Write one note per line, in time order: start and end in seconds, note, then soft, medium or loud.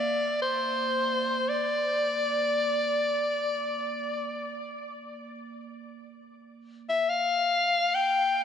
0.00 3.00 A#3 medium
0.00 0.41 D5 medium
0.42 1.51 C5 medium
1.49 4.56 D5 medium
6.89 7.11 E5 medium
7.09 7.97 F5 medium
7.95 8.43 G5 medium